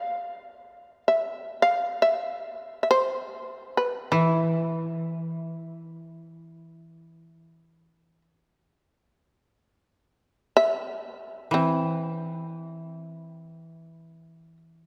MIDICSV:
0, 0, Header, 1, 3, 480
1, 0, Start_track
1, 0, Tempo, 500000
1, 14270, End_track
2, 0, Start_track
2, 0, Title_t, "Shamisen"
2, 0, Program_c, 0, 106
2, 0, Note_on_c, 0, 77, 69
2, 992, Note_off_c, 0, 77, 0
2, 1036, Note_on_c, 0, 76, 60
2, 1372, Note_off_c, 0, 76, 0
2, 1372, Note_on_c, 0, 72, 60
2, 1526, Note_off_c, 0, 72, 0
2, 1558, Note_on_c, 0, 77, 69
2, 1901, Note_off_c, 0, 77, 0
2, 1941, Note_on_c, 0, 76, 68
2, 2690, Note_off_c, 0, 76, 0
2, 2717, Note_on_c, 0, 76, 45
2, 2786, Note_off_c, 0, 76, 0
2, 2790, Note_on_c, 0, 72, 61
2, 3584, Note_off_c, 0, 72, 0
2, 3623, Note_on_c, 0, 71, 59
2, 3940, Note_off_c, 0, 71, 0
2, 3952, Note_on_c, 0, 64, 54
2, 7885, Note_off_c, 0, 64, 0
2, 10143, Note_on_c, 0, 76, 75
2, 11041, Note_off_c, 0, 76, 0
2, 11078, Note_on_c, 0, 60, 60
2, 11519, Note_off_c, 0, 60, 0
2, 11519, Note_on_c, 0, 61, 60
2, 11683, Note_off_c, 0, 61, 0
2, 11683, Note_on_c, 0, 62, 60
2, 11846, Note_off_c, 0, 62, 0
2, 11846, Note_on_c, 0, 63, 60
2, 12019, Note_off_c, 0, 63, 0
2, 12019, Note_on_c, 0, 64, 60
2, 13985, Note_off_c, 0, 64, 0
2, 14270, End_track
3, 0, Start_track
3, 0, Title_t, "Koto"
3, 0, Program_c, 1, 107
3, 3952, Note_on_c, 1, 52, 45
3, 7197, Note_off_c, 1, 52, 0
3, 11050, Note_on_c, 1, 52, 41
3, 14270, Note_off_c, 1, 52, 0
3, 14270, End_track
0, 0, End_of_file